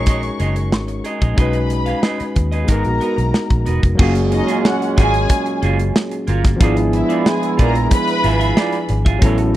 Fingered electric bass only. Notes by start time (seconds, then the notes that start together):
Already playing: A#1
0.40 F#1
0.73 G#1
1.21 A#1
1.38 B1
2.20 muted fingered electric bass stroke
2.36 D#2
2.68 G#1
2.85 A#1
3.18 B1
3.51 A#1
3.67 E1
3.83 F1
3.99 F#1
4.98 G#1
5.63 F#1
6.28 G1
6.60 G#1
7.59 A#1
8.24 G#1
8.89 G#1
9.22 A1